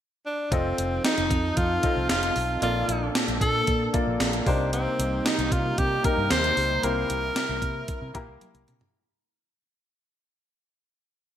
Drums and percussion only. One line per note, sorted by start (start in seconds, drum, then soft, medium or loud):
0.52 kick loud
0.52 closed hi-hat medium
0.78 closed hi-hat medium
1.05 snare loud
1.05 closed hi-hat medium
1.18 closed hi-hat medium
1.31 kick medium
1.31 closed hi-hat medium
1.57 kick medium
1.57 closed hi-hat medium
1.83 kick medium
1.83 closed hi-hat medium
2.09 snare loud
2.09 closed hi-hat medium
2.23 closed hi-hat medium
2.36 open hi-hat medium
2.62 closed hi-hat medium
2.89 closed hi-hat medium
3.15 snare loud
3.15 closed hi-hat medium
3.28 closed hi-hat medium
3.41 kick medium
3.41 closed hi-hat medium
3.67 kick medium
3.67 closed hi-hat medium
3.94 kick medium
3.94 closed hi-hat medium
4.20 snare loud
4.20 closed hi-hat medium
4.33 closed hi-hat soft
4.47 kick medium
4.47 open hi-hat medium
4.73 closed hi-hat medium
5.00 closed hi-hat medium
5.26 snare loud
5.26 closed hi-hat medium
5.39 closed hi-hat medium
5.52 kick medium
5.52 closed hi-hat medium
5.78 kick medium
5.78 closed hi-hat medium
6.04 kick medium
6.04 closed hi-hat medium
6.30 snare loud
6.30 closed hi-hat medium
6.44 closed hi-hat medium
6.57 open hi-hat medium
6.83 closed hi-hat medium
7.10 closed hi-hat medium
7.36 snare loud
7.36 closed hi-hat medium
7.62 kick medium
7.62 closed hi-hat medium
7.88 kick medium
7.88 closed hi-hat medium
8.15 kick medium
8.15 closed hi-hat medium
8.41 closed hi-hat medium
8.41 high tom medium
8.55 closed hi-hat medium
8.68 closed hi-hat medium
8.68 mid tom medium
8.81 floor tom medium